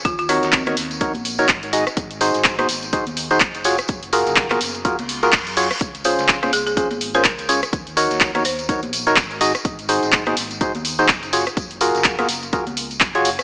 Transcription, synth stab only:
X:1
M:4/4
L:1/16
Q:"Swing 16ths" 1/4=125
K:Abmix
V:1 name="Synth stab"
z2 [EGBd]3 [EGBd] z2 [EGBd] z2 [EGBd] z2 [EGAe] z | z2 [EGAc]3 [EGAc] z2 [EGAc] z2 [EGAc] z2 [FGAd] z | z2 [FGAB]3 [FGAB] z2 [FGAB] z2 [FGAB] z2 [FGAd] z | z2 [DFAc]3 [DFAc] z2 [DFAc] z2 [DFAc] z2 [DFAd] z |
z2 [EGBd]3 [EGBd] z2 [EGBd] z2 [EGBd] z2 [EGAe] z | z2 [EGAc]3 [EGAc] z2 [EGAc] z2 [EGAc] z2 [FGAd] z | z2 [FGAB]3 [FGAB] z2 [FGAB] z4 [FGAd] z2 |]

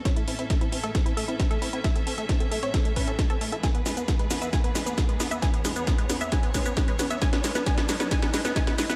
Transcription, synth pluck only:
X:1
M:4/4
L:1/16
Q:1/4=134
K:A
V:1 name="Synth pluck"
c E E E z E E A E E A E E A E E | e A A A z A A c A A B A A A A A | g B B B z B B e g B B B z B B e | g B B B z B B e g B B B z B B e |
g B B B g B B B g B B B g B B B |]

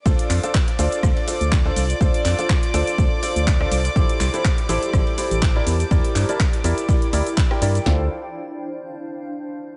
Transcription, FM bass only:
X:1
M:4/4
L:1/16
Q:"Swing 16ths" 1/4=123
K:Dm
V:1 name="FM bass" clef=bass
D,, z F,, z3 D,, z D,, z2 D,,2 z C,, z | D,, z F,, z3 D,, z D,, z2 D,,2 z C,, z | A,,, z C,, z3 A,,, z A,,, z2 A,,,2 z E,, z | E,, z G,, z3 E,, z3 D,, z3 G,, z |
D,,2 z12 z2 |]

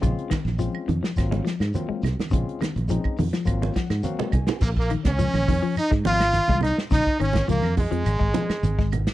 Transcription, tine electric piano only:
X:1
M:4/4
L:1/8
Q:1/4=105
K:Bbm
V:1 name="Tine electric piano"
[A,CDF] z [A,CDF] z [G,B,CF] z [G,B,CF] z | [A,CDF] z [A,CDE] z [G,B,CF] g [G,B,CGf] a | z8 | z8 |]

